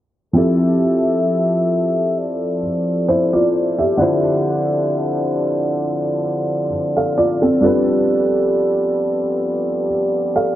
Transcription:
0.33 felt piano F3 C4 E4 G4, french horn section F3 C4 A4 E5
0.38 felt piano A4
2.17 french horn section D5
3.08 felt piano E4 C5
3.33 felt piano F4 D5
3.79 felt piano G4 E5
3.97 felt piano D3 D4 E4 F4, french horn section D5
4.02 felt piano C5
6.97 felt piano A4 F5
7.18 felt piano F4 D5
7.42 felt piano C4 A4
7.61 felt piano G3 D4 F4 A4, french horn section B3 G4
7.65 felt piano B4
10.36 felt piano A4 F5

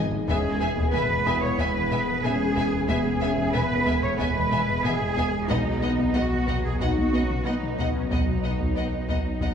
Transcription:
Already playing: double bass section G#1, sub bass G#1, ambient pad D#3 G#3 G#4 D#5, french horn section D#4, felt piano C#5
0.11 analog synth bass G#2, taiko low
0.27 sub bass E1, double bass section E1, analog synth bass E2, ambient pad E3 B3 G#4 B4, viola section B3, french horn section C#4, cello section G#4, violin section E5 G#5, taiko
0.44 analog synth bass E2
0.61 analog synth bass E2, viola section B3, french horn section B3, violin section E5 G#5
0.76 analog synth bass E2, taiko
0.93 double bass section E1, analog synth bass E3, viola section B3, cello section B4, violin section E5 G#5, taiko low-mid
1.09 analog synth bass E2
1.25 analog synth bass E2, viola section B3, felt piano E4 D#6, violin section E5 G#5, taiko
1.42 analog synth bass E2, cello section C#5, taiko low-mid
1.58 double bass section E1, analog synth bass E2, viola section B3, cello section B4, violin section E5 G#5, taiko
1.75 analog synth bass E3
1.91 analog synth bass E3, viola section B3, violin section E5 G#5, taiko low-mid
2.08 analog synth bass E2
2.24 double bass section E1, analog synth bass E3, viola section B3, french horn section C#4, cello section G#4, violin section E5 G#5, taiko low-mid
2.40 analog synth bass E2
2.56 analog synth bass E2, viola section B3, violin section E5 G#5, taiko
2.74 analog synth bass E2
2.87 double bass section E1, analog synth bass E2, french horn section B3, viola section B3, cello section G#4, violin section E5 G#5, taiko
3.06 analog synth bass E2
3.21 analog synth bass E2, viola section B3, french horn section C#4, violin section E5 G#5, felt piano E5
3.38 analog synth bass E2, taiko
3.54 double bass section E1, analog synth bass E3, french horn section B3, viola section B3, cello section B4, violin section E5 G#5, taiko low-mid
3.70 analog synth bass E2
3.86 analog synth bass E2, viola section B3, violin section E5 G#5, taiko
4.03 analog synth bass E2, cello section C#5, taiko low-mid
4.18 double bass section E1, analog synth bass E2, french horn section G#3, viola section B3, cello section B4, violin section E5 G#5, taiko
4.36 analog synth bass E3
4.51 analog synth bass E3, viola section B3, violin section E5 G#5, taiko low-mid
4.69 analog synth bass E2
4.84 double bass section E1, analog synth bass E3, viola section B3, cello section G#4, violin section E5 G#5, taiko low-mid
5.01 analog synth bass E2
5.17 analog synth bass E2, viola section B3, violin section E5 G#5, taiko
5.34 analog synth bass E2
5.48 double bass section B1, sub bass B1, analog synth bass B2, ambient pad F#3 B3 F#4 B4, french horn section F#3, viola section B3, cello section D#4, violin section D#5 F#5, taiko
5.67 analog synth bass B2
5.82 analog synth bass B2, viola section B3, felt piano B3 B4, french horn section B3, violin section D#5 F#5
5.99 analog synth bass B2, taiko
6.15 double bass section B1, viola section B3, analog synth bass B3, cello section F#4, violin section D#5 F#5
6.32 analog synth bass B2
6.47 analog synth bass B2, viola section B3, violin section D#5 F#5, taiko
6.64 analog synth bass B2, cello section G#4
6.80 double bass section B1, analog synth bass B2, viola section B3, french horn section D#4, cello section F#4, violin section D#5 F#5, taiko
6.97 analog synth bass B3
7.12 viola section B3, analog synth bass B3, french horn section C#4, violin section D#5 F#5
7.30 analog synth bass B2
7.45 double bass section B1, french horn section B3, viola section B3, analog synth bass B3, cello section D#4, violin section D#5 F#5
7.63 analog synth bass B2
7.78 analog synth bass B2, viola section B3, violin section D#5 F#5, taiko
7.95 analog synth bass B2, cello section C#4
8.10 double bass section B1, analog synth bass B2, french horn section F#3, viola section B3, cello section D#4, violin section D#5 F#5, taiko
8.27 analog synth bass B2
8.43 analog synth bass B2, viola section B3, violin section D#5 F#5
8.60 analog synth bass B2, taiko
8.76 double bass section B1, viola section B3, analog synth bass B3, violin section D#5 F#5
8.92 analog synth bass B2
9.08 analog synth bass B2, viola section B3, violin section D#5 F#5, taiko
9.25 analog synth bass B2
9.40 double bass section B1, analog synth bass B2, viola section B3, violin section D#5 F#5, taiko

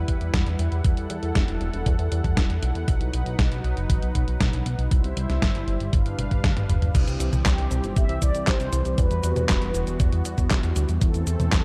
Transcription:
Already playing: analog synth pad G3 E4 B4 F#5
0.08 analog synth bass E2, kick, closed hi-hat
0.21 analog synth bass E2, closed hi-hat
0.34 analog synth bass E2, kick, snare, closed hi-hat
0.46 analog synth bass E2, closed hi-hat
0.59 analog synth bass E2, closed hi-hat
0.72 analog synth bass E2, closed hi-hat
0.84 analog synth bass E2, analog synth pad A4, kick, closed hi-hat
0.97 analog synth bass E2, closed hi-hat
1.10 analog synth bass E2, closed hi-hat
1.23 analog synth bass E2, closed hi-hat
1.35 analog synth bass E1, kick, snare, closed hi-hat
1.48 analog synth bass E1, closed hi-hat
1.61 analog synth bass E1, closed hi-hat
1.74 analog synth bass E1, closed hi-hat
1.86 analog synth bass E2, kick, closed hi-hat
1.99 analog synth bass E2, closed hi-hat
2.12 analog synth bass E2, closed hi-hat
2.24 analog synth bass E2, kick, closed hi-hat
2.37 analog synth bass E1, kick, snare, closed hi-hat
2.50 analog synth bass E2, closed hi-hat
2.63 analog synth bass B1, closed hi-hat
2.75 analog synth bass E2, closed hi-hat
2.88 analog synth bass B1, analog synth pad F#3 D#4 B4, kick, closed hi-hat
3.01 analog synth bass B1, closed hi-hat
3.13 analog synth bass B1, closed hi-hat
3.26 analog synth bass B1, closed hi-hat
3.39 analog synth bass B1, kick, snare, closed hi-hat
3.51 analog synth bass B1, closed hi-hat
3.64 analog synth bass B1, closed hi-hat
3.77 analog synth bass F#1, closed hi-hat
3.90 analog synth bass A1, kick, closed hi-hat
4.02 analog synth bass B1, closed hi-hat
4.15 analog synth bass B1, kick, closed hi-hat
4.28 analog synth bass B1, closed hi-hat
4.40 analog synth bass B1, kick, snare, closed hi-hat
4.53 analog synth bass B1, closed hi-hat
4.66 analog synth bass B1, closed hi-hat
4.79 analog synth bass B1, closed hi-hat
4.91 analog synth bass C2, analog synth pad G3 E4 C5 E5, kick, closed hi-hat
5.04 analog synth bass C2, closed hi-hat
5.17 analog synth bass C2, closed hi-hat
5.29 analog synth bass C2, snare, closed hi-hat
5.42 analog synth bass G1, kick, snare, closed hi-hat
5.55 analog synth bass G1, closed hi-hat
5.67 analog synth bass G1, closed hi-hat
5.80 analog synth bass G1, closed hi-hat
5.93 analog synth bass G1, analog synth pad D4 B4 F5, kick, closed hi-hat
6.06 analog synth bass G1, closed hi-hat
6.18 analog synth bass G1, closed hi-hat, high tom
6.31 analog synth bass G1, kick, closed hi-hat
6.44 analog synth bass D2, kick, snare, closed hi-hat, mid tom
6.56 analog synth bass G1, closed hi-hat, mid tom
6.69 analog synth bass G1, closed hi-hat, mid tom
6.82 analog synth bass G1, closed hi-hat, mid tom
6.95 analog synth bass C2, analog synth pad E3 G3 C4 G4, kick, closed hi-hat, crash, cabasa
7.07 analog synth bass C2, closed hi-hat, cabasa
7.20 analog synth bass C2, closed hi-hat, cabasa
7.33 analog synth bass C2, closed hi-hat, high tom, cabasa
7.46 analog synth bass C2, analog polysynth G4, kick, snare, clap, closed hi-hat, cabasa
7.58 analog synth bass C2, closed hi-hat
7.71 analog synth bass C2, closed hi-hat, high tom, cabasa
7.84 analog synth bass G1, closed hi-hat, cabasa
7.96 analog synth bass G1, analog polysynth E5, kick, closed hi-hat, cabasa
8.09 analog synth bass C2, closed hi-hat
8.22 analog synth bass C2, analog polysynth D5, kick, closed hi-hat, cabasa
8.34 analog synth bass C2, closed hi-hat, cabasa
8.47 analog synth bass C2, analog polysynth C5, kick, snare, clap, closed hi-hat, cabasa
8.60 analog synth bass C2, closed hi-hat, cabasa
8.73 analog synth bass C2, closed hi-hat, cabasa
8.85 analog synth bass C2, closed hi-hat, cabasa
8.98 analog synth bass E2, analog synth pad B3 F#4, analog polysynth B4, kick, closed hi-hat, cabasa
9.11 analog synth bass E2, closed hi-hat, cabasa
9.23 analog synth bass E2, closed hi-hat, cabasa
9.36 analog synth bass E2, closed hi-hat, high tom, cabasa
9.49 analog synth bass E1, kick, snare, clap, closed hi-hat, cabasa
9.62 analog synth bass E1, closed hi-hat
9.74 analog synth bass E1, closed hi-hat, cabasa
9.87 analog synth bass E1, closed hi-hat, cabasa
10.00 analog synth bass E2, kick, closed hi-hat, cabasa
10.12 analog synth bass E2, closed hi-hat
10.25 analog synth bass E2, closed hi-hat, cabasa
10.38 analog synth bass E2, kick, closed hi-hat, cabasa
10.51 analog synth bass E1, kick, snare, clap, closed hi-hat, cabasa
10.63 analog synth bass E2, closed hi-hat, cabasa
10.76 analog synth bass D2, closed hi-hat, cabasa
10.89 analog synth bass E2, closed hi-hat, cabasa
11.01 analog synth bass E2, analog synth pad A3 C4 A4, kick, closed hi-hat, cabasa
11.14 analog synth bass E2, closed hi-hat, cabasa
11.27 analog synth bass E2, closed hi-hat, cabasa
11.40 analog synth bass E2, closed hi-hat, high tom, cabasa
11.52 analog synth bass E2, analog polysynth A4, kick, snare, clap, closed hi-hat, cabasa

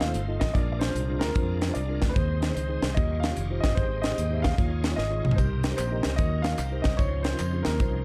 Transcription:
Already playing: tonewheel organ A3 D#4 F4 C5
0.00 fingered electric bass D#2, grand piano F5, snare, closed hi-hat
0.08 tine electric piano D#4 F4 A4 C5
0.14 fingered electric bass G1, closed hi-hat
0.28 tine electric piano D#4 F4 A4 D#5
0.40 fingered electric bass A1, grand piano D#5, kick, snare, closed hi-hat
0.54 fingered electric bass A#1, tine electric piano A#2 D4 F4 G#4 A#4, tonewheel organ G#3 D4 F4 A#4, grand piano D5, kick, closed hi-hat
0.72 grand piano D5
0.79 grand piano C5, snare, closed hi-hat
0.88 tine electric piano D4 F4 G#4 C5
0.95 fingered electric bass C2, closed hi-hat
1.09 tine electric piano D4 F4 G#4 C5
1.19 fingered electric bass D2, grand piano A#4, snare, closed hi-hat
1.35 fingered electric bass F2, tine electric piano D4 F4 G#4 C5, kick, closed hi-hat
1.62 snare, closed hi-hat
1.68 tine electric piano D4 F4 G#4 C5
1.74 fingered electric bass C2, grand piano D5, closed hi-hat
1.89 tine electric piano D4 F4 G#4 A#4
2.02 fingered electric bass D2, kick, snare, closed hi-hat
2.09 grand piano B4
2.13 fingered electric bass D#2, tine electric piano D#3 C4 D#4 G#4 C5, tonewheel organ G#3 C4 D#4 C5, grand piano C5, kick, closed hi-hat
2.42 snare, closed hi-hat
2.49 tine electric piano C4 D#4 G#4 C5
2.54 fingered electric bass C#2, grand piano C5, closed hi-hat
2.69 tine electric piano C4 D#4 G#4 C5
2.83 fingered electric bass C2, snare, closed hi-hat
2.94 fingered electric bass D#2, tine electric piano D#3 D#4 F4 G4 C#5, tonewheel organ G3 D#4 F4 C#5, grand piano D#5, kick, closed hi-hat
3.20 grand piano F5, snare, closed hi-hat
3.30 tine electric piano D#4 F4 G4 C#5
3.37 fingered electric bass F1, closed hi-hat
3.50 tine electric piano D#4 F4 G4 C5
3.60 fingered electric bass G1, grand piano D#5, kick, snare, closed hi-hat
3.75 fingered electric bass G#1, tine electric piano G#2 D#4 G4 G#4 C5, tonewheel organ G#3 D#4 G4 C5, grand piano C5, kick, closed hi-hat
4.02 grand piano D#5, snare, closed hi-hat
4.11 tine electric piano D#4 G4 G#4 C5
4.18 fingered electric bass D#2, closed hi-hat
4.31 tine electric piano D#4 G4 G#4 C5, grand piano E5
4.42 grand piano F5, kick, snare, closed hi-hat
4.58 fingered electric bass D#2, tine electric piano D#3 D#4 F4 G#4 C#5, tonewheel organ G#3 D#4 F4 C#5, kick, closed hi-hat
4.84 snare, closed hi-hat
4.91 tine electric piano D#4 F4 G#4 C#5
4.96 fingered electric bass G#1, grand piano D#5, snare
5.10 tine electric piano D#4 F4 G#4 C#5
5.25 fingered electric bass A#1, mid tom
5.31 floor tom
5.36 fingered electric bass C2, tine electric piano C3 D#4 G4 A#4 C5, tonewheel organ G3 C4 D#4 A#4, grand piano C5, kick, closed hi-hat, tambourine
5.63 snare, closed hi-hat, tambourine
5.71 tine electric piano D#4 G4 A#4 C5
5.77 fingered electric bass A#1, grand piano C5, clap, closed hi-hat, tambourine
5.91 tine electric piano D#4 G4 A#4 D#5
6.03 fingered electric bass C#2, snare, closed hi-hat, tambourine
6.16 fingered electric bass D#2, tine electric piano D#3 D#4 F#4 A#4 C#5, tonewheel organ F#3 C#4 D#4 A#4, grand piano D#5, kick, closed hi-hat, tambourine
6.42 grand piano F5, snare, closed hi-hat, tambourine
6.51 tine electric piano D#4 F#4 A#4 D#5
6.57 fingered electric bass C2, tine electric piano C3, tonewheel organ G3 C4 D#4 A#4, clap, closed hi-hat, tambourine
6.71 tine electric piano D#4 G4 A#4 C5
6.82 fingered electric bass C2, grand piano D#5, kick, snare, closed hi-hat
6.86 tambourine
6.97 fingered electric bass C#2, tine electric piano C#3 C#4 D#4 F4 C5, tonewheel organ F3 C#4 D#4 C5, grand piano C#5, kick, closed hi-hat, tambourine
7.23 grand piano C5, snare, closed hi-hat, tambourine
7.32 tine electric piano C#4 D#4 F4 A#4
7.39 fingered electric bass F2, clap, closed hi-hat, tambourine
7.53 tine electric piano C#4 D#4 F4 G#4
7.63 fingered electric bass D#2, grand piano A#4, snare, closed hi-hat, tambourine
7.80 fingered electric bass C2, tine electric piano C#4 D#4 F4 C5, kick, closed hi-hat, tambourine

